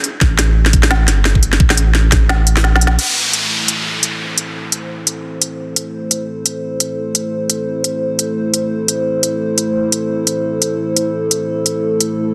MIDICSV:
0, 0, Header, 1, 5, 480
1, 0, Start_track
1, 0, Key_signature, 0, "minor"
1, 0, Tempo, 346821
1, 296, Time_signature, 4, 2, 24, 8
1, 17083, End_track
2, 0, Start_track
2, 0, Title_t, "Analog synth pad"
2, 0, Program_c, 0, 89
2, 4136, Note_on_c, 0, 57, 74
2, 4341, Note_on_c, 0, 64, 72
2, 4873, Note_on_c, 0, 69, 87
2, 5580, Note_on_c, 0, 72, 75
2, 17083, Note_off_c, 0, 57, 0
2, 17083, Note_off_c, 0, 64, 0
2, 17083, Note_off_c, 0, 69, 0
2, 17083, Note_off_c, 0, 72, 0
2, 17083, End_track
3, 0, Start_track
3, 0, Title_t, "Sub bass"
3, 0, Program_c, 1, 38
3, 295, Note_on_c, 1, 33, 98
3, 1494, Note_on_c, 1, 31, 89
3, 1515, Note_off_c, 1, 33, 0
3, 2202, Note_off_c, 1, 31, 0
3, 2215, Note_on_c, 1, 33, 100
3, 3793, Note_on_c, 1, 34, 88
3, 3814, Note_off_c, 1, 33, 0
3, 4122, Note_off_c, 1, 34, 0
3, 17083, End_track
4, 0, Start_track
4, 0, Title_t, "Downlifter"
4, 0, Program_c, 2, 103
4, 4135, Note_on_c, 2, 60, 64
4, 7975, Note_off_c, 2, 60, 0
4, 17083, End_track
5, 0, Start_track
5, 0, Title_t, "Drums"
5, 54, Note_on_c, 9, 42, 59
5, 192, Note_off_c, 9, 42, 0
5, 295, Note_on_c, 9, 36, 110
5, 295, Note_on_c, 9, 40, 55
5, 433, Note_off_c, 9, 36, 0
5, 434, Note_off_c, 9, 40, 0
5, 535, Note_on_c, 9, 40, 81
5, 535, Note_on_c, 9, 42, 76
5, 673, Note_off_c, 9, 40, 0
5, 673, Note_off_c, 9, 42, 0
5, 913, Note_on_c, 9, 40, 53
5, 1013, Note_on_c, 9, 42, 65
5, 1015, Note_on_c, 9, 36, 99
5, 1051, Note_off_c, 9, 40, 0
5, 1152, Note_off_c, 9, 42, 0
5, 1152, Note_on_c, 9, 40, 82
5, 1153, Note_off_c, 9, 36, 0
5, 1254, Note_on_c, 9, 38, 111
5, 1291, Note_off_c, 9, 40, 0
5, 1392, Note_off_c, 9, 38, 0
5, 1493, Note_on_c, 9, 40, 54
5, 1493, Note_on_c, 9, 42, 76
5, 1632, Note_off_c, 9, 40, 0
5, 1632, Note_off_c, 9, 42, 0
5, 1735, Note_on_c, 9, 40, 81
5, 1873, Note_off_c, 9, 40, 0
5, 1873, Note_on_c, 9, 36, 56
5, 1975, Note_on_c, 9, 42, 64
5, 2012, Note_off_c, 9, 36, 0
5, 2113, Note_off_c, 9, 42, 0
5, 2114, Note_on_c, 9, 40, 56
5, 2214, Note_on_c, 9, 36, 117
5, 2252, Note_off_c, 9, 40, 0
5, 2353, Note_off_c, 9, 36, 0
5, 2356, Note_on_c, 9, 38, 36
5, 2356, Note_on_c, 9, 40, 82
5, 2456, Note_on_c, 9, 42, 79
5, 2494, Note_off_c, 9, 38, 0
5, 2494, Note_off_c, 9, 40, 0
5, 2594, Note_off_c, 9, 42, 0
5, 2695, Note_on_c, 9, 40, 53
5, 2833, Note_off_c, 9, 40, 0
5, 2934, Note_on_c, 9, 36, 106
5, 2935, Note_on_c, 9, 40, 82
5, 2935, Note_on_c, 9, 42, 66
5, 3073, Note_off_c, 9, 36, 0
5, 3074, Note_off_c, 9, 40, 0
5, 3074, Note_off_c, 9, 42, 0
5, 3175, Note_on_c, 9, 38, 113
5, 3313, Note_off_c, 9, 38, 0
5, 3416, Note_on_c, 9, 42, 82
5, 3554, Note_off_c, 9, 42, 0
5, 3554, Note_on_c, 9, 40, 82
5, 3654, Note_on_c, 9, 38, 66
5, 3692, Note_off_c, 9, 40, 0
5, 3793, Note_off_c, 9, 38, 0
5, 3814, Note_on_c, 9, 38, 76
5, 3894, Note_on_c, 9, 42, 66
5, 3952, Note_off_c, 9, 38, 0
5, 3974, Note_on_c, 9, 38, 94
5, 4033, Note_off_c, 9, 42, 0
5, 4112, Note_off_c, 9, 38, 0
5, 4134, Note_on_c, 9, 42, 75
5, 4134, Note_on_c, 9, 49, 75
5, 4273, Note_off_c, 9, 42, 0
5, 4273, Note_off_c, 9, 49, 0
5, 4615, Note_on_c, 9, 42, 61
5, 4753, Note_off_c, 9, 42, 0
5, 5097, Note_on_c, 9, 42, 75
5, 5236, Note_off_c, 9, 42, 0
5, 5576, Note_on_c, 9, 42, 64
5, 5715, Note_off_c, 9, 42, 0
5, 6057, Note_on_c, 9, 42, 78
5, 6195, Note_off_c, 9, 42, 0
5, 6536, Note_on_c, 9, 42, 61
5, 6674, Note_off_c, 9, 42, 0
5, 7016, Note_on_c, 9, 42, 71
5, 7154, Note_off_c, 9, 42, 0
5, 7495, Note_on_c, 9, 42, 62
5, 7633, Note_off_c, 9, 42, 0
5, 7976, Note_on_c, 9, 42, 75
5, 8115, Note_off_c, 9, 42, 0
5, 8456, Note_on_c, 9, 42, 60
5, 8594, Note_off_c, 9, 42, 0
5, 8936, Note_on_c, 9, 42, 72
5, 9074, Note_off_c, 9, 42, 0
5, 9414, Note_on_c, 9, 42, 60
5, 9553, Note_off_c, 9, 42, 0
5, 9894, Note_on_c, 9, 42, 71
5, 10033, Note_off_c, 9, 42, 0
5, 10374, Note_on_c, 9, 42, 59
5, 10513, Note_off_c, 9, 42, 0
5, 10854, Note_on_c, 9, 42, 69
5, 10992, Note_off_c, 9, 42, 0
5, 11334, Note_on_c, 9, 42, 59
5, 11472, Note_off_c, 9, 42, 0
5, 11814, Note_on_c, 9, 42, 68
5, 11953, Note_off_c, 9, 42, 0
5, 12295, Note_on_c, 9, 42, 56
5, 12433, Note_off_c, 9, 42, 0
5, 12775, Note_on_c, 9, 42, 67
5, 12913, Note_off_c, 9, 42, 0
5, 13255, Note_on_c, 9, 42, 59
5, 13393, Note_off_c, 9, 42, 0
5, 13734, Note_on_c, 9, 42, 69
5, 13873, Note_off_c, 9, 42, 0
5, 14213, Note_on_c, 9, 42, 57
5, 14352, Note_off_c, 9, 42, 0
5, 14694, Note_on_c, 9, 42, 67
5, 14833, Note_off_c, 9, 42, 0
5, 15176, Note_on_c, 9, 42, 57
5, 15314, Note_off_c, 9, 42, 0
5, 15654, Note_on_c, 9, 42, 72
5, 15793, Note_off_c, 9, 42, 0
5, 16135, Note_on_c, 9, 42, 59
5, 16273, Note_off_c, 9, 42, 0
5, 16615, Note_on_c, 9, 42, 68
5, 16754, Note_off_c, 9, 42, 0
5, 17083, End_track
0, 0, End_of_file